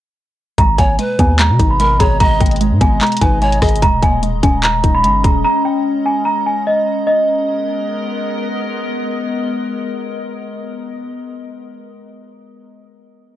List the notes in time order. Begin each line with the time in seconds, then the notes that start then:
0.58 G#1 B2 G#3 D#5 A#5, kick, closed hi-hat
0.78 G#1 A#3 C#5 G#5, kick, closed hi-hat
0.99 G#3 B4, closed hi-hat
1.19 D#2 B3 G#5, kick, closed hi-hat
1.39 G#3 A#5, clap, closed hi-hat
1.50 B2
1.59 G#1 D#4, kick, closed hi-hat
1.70 B5
1.80 G#3 A#4 B5, closed hi-hat
1.99 G#1 G#4 C#5 A#5, kick, closed hi-hat
2.20 G#1 G#3 D#5 A#5, kick, closed hi-hat
2.40 G#1 A#3 G5, kick, closed hi-hat
2.46 closed hi-hat
2.51 closed hi-hat
2.56 closed hi-hat
2.61 G#3, closed hi-hat
2.71 G#2
2.81 G#1 B3 G#5, kick, closed hi-hat
3.01 G#3 A#5, clap, closed hi-hat
3.07 closed hi-hat
3.12 closed hi-hat
3.17 closed hi-hat
3.21 G#1 D#4 B4 G#5, kick, closed hi-hat
3.42 G#3 C#5 G#5, closed hi-hat
3.52 closed hi-hat
3.62 G#1 G#4 D#5, kick, cross-stick, closed hi-hat, open hi-hat
3.69 closed hi-hat
3.76 closed hi-hat
3.82 D#1 G#3 C#4 A#5, kick, closed hi-hat
4.03 D#1 A#3 G#5, kick, closed hi-hat
4.23 G#3, closed hi-hat
4.43 D#1 C#4 G#5, kick, closed hi-hat
4.63 G#3 A#5, clap, closed hi-hat
4.84 D#1 D#4, kick, closed hi-hat
4.95 B5
5.04 G1 G#3 B5, closed hi-hat
5.24 D#1 G#4 A#5, kick, closed hi-hat
5.45 A#5
5.65 G5
6.06 G#5
6.25 A#5
6.46 G#5
6.67 D#5
7.07 G#3 B3 A#4 D#5